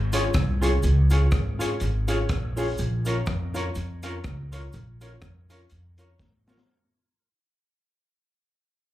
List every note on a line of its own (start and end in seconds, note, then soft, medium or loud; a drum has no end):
0.00 0.27 G#1 medium
0.12 0.25 C#4 loud
0.12 0.22 F4 medium
0.12 0.25 F4 medium
0.12 0.26 G#4 medium
0.12 0.23 G#4 loud
0.12 0.26 C#5 loud
0.12 0.23 C#5 medium
0.12 closed hi-hat loud
0.12 cabasa medium
0.34 0.76 C2 medium
0.34 kick loud
0.34 cross-stick loud
0.34 closed hi-hat medium
0.34 cabasa soft
0.62 0.74 C#4 loud
0.62 0.71 F4 medium
0.62 0.74 F4 medium
0.62 0.74 G#4 medium
0.62 0.71 G#4 medium
0.62 0.74 C#5 medium
0.62 0.72 C#5 medium
0.62 closed hi-hat medium
0.62 cabasa medium
0.82 1.25 C#2 loud
0.82 closed hi-hat medium
0.82 cabasa medium
1.10 1.23 C#4 medium
1.10 1.20 F4 medium
1.10 1.23 F4 medium
1.10 1.23 G#4 medium
1.10 1.20 G#4 loud
1.10 1.23 C#5 loud
1.10 1.21 C#5 medium
1.10 closed hi-hat medium
1.10 cabasa medium
1.31 1.74 G#1 medium
1.31 1.37 G#4 soft
1.31 1.37 C#5 soft
1.31 kick loud
1.31 cross-stick loud
1.31 closed hi-hat medium
1.31 cabasa medium
1.59 1.71 C#4 loud
1.59 1.71 F4 medium
1.59 1.68 F4 medium
1.59 1.72 G#4 medium
1.59 1.69 G#4 medium
1.59 1.72 C#5 loud
1.59 1.70 C#5 medium
1.59 closed hi-hat loud
1.59 cabasa medium
1.80 2.22 G#1 loud
1.80 closed hi-hat medium
1.80 cabasa medium
2.08 2.20 C#4 loud
2.08 2.20 F4 medium
2.08 2.17 F4 medium
2.08 2.20 G#4 medium
2.08 2.18 G#4 medium
2.08 2.21 C#5 loud
2.08 2.18 C#5 medium
2.08 closed hi-hat medium
2.08 cabasa medium
2.29 2.71 A#1 medium
2.29 kick loud
2.29 cross-stick loud
2.29 closed hi-hat medium
2.29 cabasa medium
2.56 2.69 C#4 medium
2.56 2.69 F4 medium
2.56 2.66 F4 medium
2.56 2.69 G#4 medium
2.56 2.67 G#4 medium
2.56 2.69 C#5 loud
2.56 2.67 C#5 medium
2.56 open hi-hat soft
2.56 cabasa medium
2.78 3.20 A#1 loud
2.78 closed hi-hat medium
2.78 cabasa medium
3.05 3.17 C#4 medium
3.05 3.18 F4 medium
3.05 3.15 F4 medium
3.05 3.18 A#4 medium
3.05 3.16 A#4 medium
3.05 3.18 C#5 loud
3.05 3.16 C#5 loud
3.05 closed hi-hat medium
3.05 cabasa medium
3.26 3.69 F2 medium
3.26 3.32 A#4 soft
3.26 3.32 C#5 soft
3.26 kick loud
3.26 cross-stick loud
3.26 closed hi-hat medium
3.26 cabasa medium
3.54 3.66 C#4 medium
3.54 3.66 F4 medium
3.54 3.64 F4 medium
3.54 3.67 A#4 medium
3.54 3.64 A#4 medium
3.54 3.67 C#5 loud
3.54 3.65 C#5 loud
3.54 closed hi-hat medium
3.54 cabasa medium
3.75 4.17 F2 medium
3.75 closed hi-hat medium
3.75 cabasa medium
4.03 4.15 C#4 loud
4.03 4.15 F4 medium
4.03 4.12 F4 medium
4.03 4.16 A#4 medium
4.03 4.13 A#4 medium
4.03 4.16 C#5 loud
4.03 4.14 C#5 loud
4.03 closed hi-hat loud
4.03 cabasa medium
4.24 4.66 C#2 loud
4.24 kick loud
4.24 cross-stick loud
4.24 closed hi-hat medium
4.24 cabasa soft
4.52 4.64 C#4 medium
4.52 4.61 F4 medium
4.52 4.64 F4 medium
4.52 4.64 A#4 medium
4.52 4.62 A#4 medium
4.52 4.65 C#5 loud
4.52 4.62 C#5 medium
4.52 closed hi-hat medium
4.52 cabasa medium
4.72 5.15 A#1 loud
4.72 closed hi-hat medium
4.72 cabasa medium
5.01 5.13 C#4 medium
5.01 5.10 F4 medium
5.01 5.13 F4 medium
5.01 5.13 A#4 medium
5.01 5.11 A#4 medium
5.01 5.14 C#5 loud
5.01 5.11 C#5 medium
5.01 closed hi-hat medium
5.01 cabasa medium
5.21 5.64 F2 medium
5.21 kick loud
5.21 cross-stick loud
5.21 closed hi-hat medium
5.21 cabasa medium
5.49 5.62 C#4 loud
5.49 5.59 F4 medium
5.49 5.62 F4 medium
5.49 5.62 A#4 medium
5.49 5.59 A#4 medium
5.49 5.62 C#5 loud
5.49 5.60 C#5 medium
5.49 closed hi-hat loud
5.49 cabasa medium
5.70 6.13 F2 medium
5.70 closed hi-hat medium
5.70 cabasa medium
5.98 6.10 C#4 loud
5.98 6.10 F4 medium
5.98 6.08 F4 medium
5.98 6.11 A#4 medium
5.98 6.08 A#4 medium
5.98 6.11 C#5 loud
5.98 6.09 C#5 medium
5.98 closed hi-hat medium
5.98 cabasa medium
6.19 6.61 A1 medium
6.19 kick loud
6.19 snare medium
6.19 cabasa soft
6.46 6.59 C#4 medium
6.46 6.59 F4 medium
6.46 6.56 F4 medium
6.46 6.59 A#4 medium
6.46 6.57 A#4 medium
6.46 6.59 C#5 medium
6.46 6.57 C#5 medium
6.46 snare medium
6.46 cabasa medium
6.58 snare loud